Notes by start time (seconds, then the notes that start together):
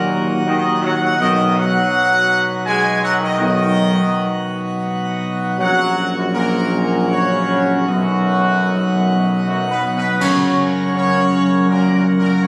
Already playing: D#2 A#2 F#3 A#3 D#4 F#4 A#4
0.46 D#3 D#4 D#5
0.82 F#3 F#4 F#5
1.02 F#3 F#4 F#5
1.18 B1 B2 D#3 F#3 D#4 F#4 D#5
1.56 F#3 F#4 F#5
2.65 G#3 G#4 G#5
3.01 F#3 F#4 F#5
3.21 D#3 D#4 D#5
3.38 B1 D#3 D#4 D#5
5.59 A#1 A#2 F#3 C#4 F#4 F#5
6.15 F#2 F#3 F#4
6.33 A#2 A#3 A#4
7.10 C#3 C#4 C#5
7.87 B1 F#2 B2 F#3 D#4 F#4
9.43 F#2 F#3 F#4
9.68 B2 B3 B4
9.94 B2 B3 B4
10.20 F#2 C#3 F#3 C#4 F#4 A#4 C#5, concert bass drum, crash
10.95 C#3 C#4 C#5
11.67 A#2 A#3 A#4
11.93 A#2 A#3 A#4
12.17 A#2 A#3 A#4
12.42 C#3 C#4 C#5